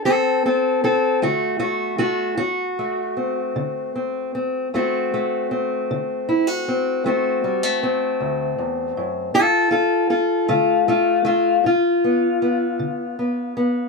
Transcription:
steel-string acoustic guitar
0.05 D2 C4 A4
0.46 C4 A4
0.84 C4 A4
1.22 D3 A3 F#4
1.59 A3 F#4
1.98 A3 F#4
2.37 D2 F#4
2.79 A3
3.17 C4
3.56 D3
3.96 C4
4.35 C4
4.74 D2 A3 C4 F#4
5.14 A3
5.51 C4
5.91 D3
6.29 E4
6.47 F#4
6.68 C4
7.04 D2 A3 C4 F#4
7.44 G3
7.63 A3
7.83 C4
8.20 D2
8.58 E2
8.97 F#2
9.34 G2 F4 A4
9.71 F4 A4
10.10 F4 A4
10.49 D3 A3 F4
10.88 A3 F4
11.25 A3 F4
11.64 G2 F4
12.04 B3
12.42 B3
12.79 D3
13.19 B3
13.57 B3

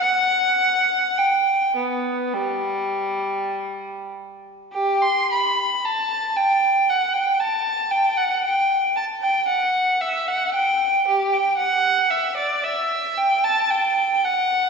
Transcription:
violin
0.00 F#5
1.18 G5
1.76 B3
2.34 G3
4.73 G4
5.03 C6
5.32 B5
5.85 A5
6.37 G5
6.90 F#5
7.14 G5
7.40 A5
7.91 G5
8.17 F#5
8.44 G5
8.97 A5
9.22 G5
9.48 F#5
10.01 E5
10.28 F#5
10.54 G5
11.08 G4
11.33 G5
11.57 F#5
12.11 E5
12.37 D5
12.64 E5
13.18 G5
13.44 A5
13.70 G5
14.25 F#5

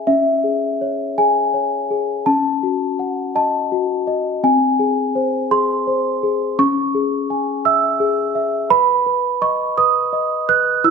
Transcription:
celesta
Already playing: G#4
0.07 C#4 E5
0.44 G#4
0.81 C#5
1.18 G#4 G#5
1.54 C#5
1.91 G#4
2.26 C#4 A5
2.63 F#4
2.99 F#5
3.35 D#5 A5
3.72 F#4
4.07 D#5
4.44 C4 G#5
4.79 G#4
5.15 C5
5.51 G#4 C6
5.87 C5
6.23 G#4
6.59 C#4 C#6
6.95 G#4
7.30 G#5
7.65 E5 E6
8.00 G#4
8.35 E5
8.70 B4 B5
9.06 B4
9.42 D#5 C#6
9.78 B4 D#6
10.13 D#5
10.49 B4 F#6
10.84 E4 E6

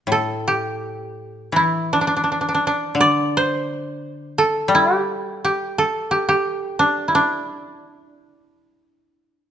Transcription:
koto
0.07 A2
0.12 A4
0.48 G4
1.52 E3 E4
1.93 D4
2.01 D4
2.07 D4
2.17 D4
2.24 D4
2.32 D4
2.41 D4
2.49 D4
2.54 D4
2.67 D4
2.95 D3
3.00 D5
3.37 C5
4.38 A4
4.68 G3
4.75 E4
4.95 G4
5.45 G4
5.78 A4
6.11 G4
6.29 G4
6.79 D4
7.08 E4
7.15 D4

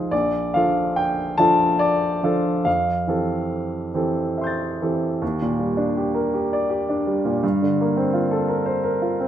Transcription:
grand piano
Already playing: F3 D#4 F4 G#4
0.11 A#1 D5
0.54 F3 D4 F4 A4 F5
0.96 G5
1.38 F3 D4 F4 A4 A5
1.79 D5
2.23 F3 D4 F4 A4
2.65 F2 F5
3.07 E3 C4 G4 A4
3.94 E3 C4 G4 A4
4.38 E5 C6
4.44 G6 A6
4.82 E3 C4 G4 A4
5.22 D#2
5.42 A#2
5.59 G3
5.77 D4
5.97 G4
6.14 A#4
6.34 G4
6.53 D5
6.70 G4
6.89 D4
7.07 G3
7.25 A#2
7.43 G2
7.62 D3
7.81 A#3
7.97 C4
8.14 F4
8.31 A4
8.48 A#4
8.66 C5
8.84 A#4
9.02 F4
9.20 C4

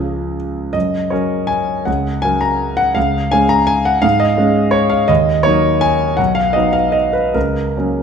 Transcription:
grand piano
Already playing: C#2 F3 C#4 G#4 G#5
0.73 F#2 D#5
1.10 F#3 C#4 A#4 C#5
1.47 G#5
1.85 C#2 F#5
2.22 F#3 C#4 A#4 G#5
2.41 A#5
2.77 F#5
2.95 C#2 F5
3.31 G#3 C#4 G#4 G#5
3.49 A#5
3.67 G#5
3.85 F#5
4.02 G#2 F5
4.20 D#5
4.37 G#3 C#4 G#4
4.71 C#5
4.90 F5
5.08 D#2 D#5
5.43 F#3 A#3 D#4 C#5
5.81 G#5
6.17 B1 F#5
6.35 F5
6.53 F#3 B3 D#4 D#5
6.73 F5
6.92 D#5
7.13 B4
7.34 C#2 A#4
7.77 F#3 A#3 C#4

